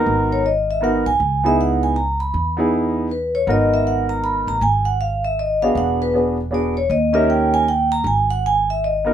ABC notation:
X:1
M:3/4
L:1/8
Q:"Swing" 1/4=158
K:G#m
V:1 name="Vibraphone"
a c d e f g- | g e f g a b- | b2 z2 B c | d e f a b a |
g f ^e =e d ^e | f B z2 =d c | d e =g ^g =g a | g f g e d2 |]
V:2 name="Upright piano"
[B,DFA]2 z2 [B,DFA] z | z [B,DEG]3 z2 | z [B,DEG]3 z2 | [B,DFA]4- [B,DFA] z |
z4 z [B,=DFG]- | [B,=DFG]2 [B,DFG] z [B,DFG] z | z [CD=GA]3 z2 | z4 z [B,DFA] |]
V:3 name="Upright bass" clef=bass
G,,,4- G,,, B,,, | C,,6 | E,,6 | G,,,4- G,,, =A,,, |
G,,,6 | E,,,6 | D,,6 | G,,,6 |]